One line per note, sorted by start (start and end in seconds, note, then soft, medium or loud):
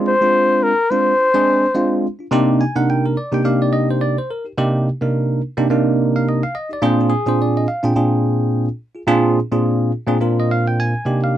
0.00 0.13 G#3 medium
0.00 0.13 C4 medium
0.00 0.13 D4 medium
0.00 0.13 F4 medium
0.08 0.65 C5 loud
0.21 0.71 G#3 medium
0.21 0.72 C4 medium
0.21 0.72 D4 medium
0.21 0.72 F4 medium
0.63 0.92 A#4 medium
0.90 1.12 G#3 medium
0.90 1.12 C4 medium
0.90 1.13 D4 medium
0.90 1.13 F4 medium
0.90 2.04 C5 medium
1.19 1.27 D4 soft
1.19 1.27 F4 soft
1.34 1.65 G#3 medium
1.34 1.65 C4 medium
1.34 1.65 D4 medium
1.34 1.65 G#4 medium
1.75 2.06 G#3 medium
1.75 2.06 C4 medium
1.75 2.06 D4 medium
1.75 2.06 F4 medium
2.19 2.25 D4 soft
2.19 2.26 F4 soft
2.31 2.62 C3 loud
2.31 2.62 A#3 medium
2.31 2.62 D4 medium
2.31 2.62 D#4 loud
2.31 2.63 G4 loud
2.61 2.76 G#5 medium
2.75 3.15 C3 medium
2.75 3.15 A#3 medium
2.75 3.15 D4 medium
2.75 3.15 D#4 medium
2.75 3.04 A#4 medium
2.75 2.88 F#5 medium
2.90 3.04 G5 medium
3.06 3.17 A#4 medium
3.17 3.32 D5 medium
3.32 3.41 C3 medium
3.32 3.41 A#3 medium
3.32 3.41 D4 medium
3.32 3.41 D#4 medium
3.32 3.42 G4 medium
3.32 3.46 G5 medium
3.44 4.16 C3 medium
3.44 4.16 A#3 medium
3.44 4.16 D4 medium
3.44 4.17 D#4 medium
3.44 4.17 G4 medium
3.44 3.60 F5 medium
3.62 3.74 D5 medium
3.73 3.88 D#5 medium
3.91 4.02 C5 medium
4.01 4.16 D5 medium
4.18 4.30 C5 medium
4.30 4.45 A#4 medium
4.44 4.51 D#4 soft
4.44 4.51 G4 soft
4.57 4.88 C3 loud
4.57 4.88 A#3 medium
4.57 4.88 D4 medium
4.57 4.88 D#4 medium
4.57 4.88 G4 loud
5.01 5.40 C3 medium
5.01 5.40 A#3 medium
5.01 5.40 D4 medium
5.01 5.40 D#4 medium
5.01 5.41 A#4 medium
5.57 5.66 C3 medium
5.57 5.66 A#3 medium
5.57 5.67 D4 medium
5.57 5.67 D#4 medium
5.57 5.67 G4 medium
5.70 6.42 C3 medium
5.70 6.42 A#3 medium
5.70 6.42 D4 medium
5.70 6.42 D#4 medium
5.70 6.42 A#4 medium
6.16 6.27 F5 medium
6.29 6.43 D#5 medium
6.43 6.55 F5 medium
6.55 6.70 D#5 medium
6.69 6.76 D#4 soft
6.69 6.76 G4 soft
6.69 6.84 D5 medium
6.82 7.13 A#2 medium
6.82 7.13 C4 medium
6.82 7.13 D4 medium
6.82 7.00 F4 medium
6.82 7.09 G#4 loud
6.82 6.99 C5 medium
7.01 7.12 F4 soft
7.10 7.25 G#4 medium
7.26 7.65 A#2 medium
7.26 7.65 C4 medium
7.26 7.65 D4 medium
7.26 7.66 F4 medium
7.26 7.66 G#4 medium
7.26 7.40 C5 medium
7.42 7.56 D5 medium
7.57 7.68 D#5 medium
7.68 7.83 F5 medium
7.83 7.92 A#2 medium
7.83 7.92 C4 medium
7.83 7.92 D4 medium
7.83 7.92 F4 medium
7.83 7.93 G#4 medium
7.83 8.65 G5 medium
7.95 8.67 A#2 medium
7.95 8.67 C4 medium
7.95 8.67 D4 medium
7.95 8.68 F4 medium
7.95 8.68 G#4 medium
8.95 9.01 F4 soft
8.95 9.02 G#4 soft
9.07 9.38 A#2 loud
9.07 9.38 C4 loud
9.07 9.38 D4 medium
9.07 9.38 F4 loud
9.07 9.39 G#4 loud
9.51 9.91 A#2 medium
9.51 9.91 C4 medium
9.51 9.91 D4 medium
9.51 9.91 F4 medium
9.51 9.91 G#4 medium
10.07 10.17 A#2 medium
10.07 10.17 C4 medium
10.07 10.17 D4 medium
10.07 10.17 F4 medium
10.07 10.17 G#4 medium
10.20 10.93 A#2 medium
10.20 10.93 C4 medium
10.20 10.93 D4 medium
10.20 10.93 F4 medium
10.20 10.93 A#4 medium
10.40 10.51 D#5 medium
10.51 10.66 F5 medium
10.68 10.79 G5 medium
10.80 11.20 G#5 loud
11.05 11.38 C3 medium
11.05 11.38 A#3 medium
11.05 11.38 D4 medium
11.05 11.38 D#4 medium
11.05 11.38 G4 medium
11.24 11.35 F5 medium